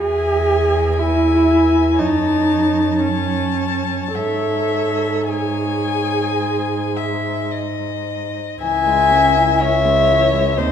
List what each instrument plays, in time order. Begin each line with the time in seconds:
0.01 cello E2, viola G#4, violin E5 G#5
0.98 viola E4, violin E5 G#5
1.98 cello F#2, viola D#4, violin C#5 A5
2.99 viola C#4, violin C#5 A5
4.14 cello G#2, viola A4, violin C#5 E5
5.29 viola G#4, violin C#5 G#5
6.40 violin C5
6.96 violin E5
7.52 violin D#5
8.60 cello C#2, viola E3, violin E5 G#5
8.86 viola G#3
9.12 viola C#4
9.36 viola E4
9.59 viola C#4, violin C#5 E5
9.85 viola G#3
10.10 viola E3
10.34 viola G#3
10.58 cello D#2, viola C4, violin C5 D#5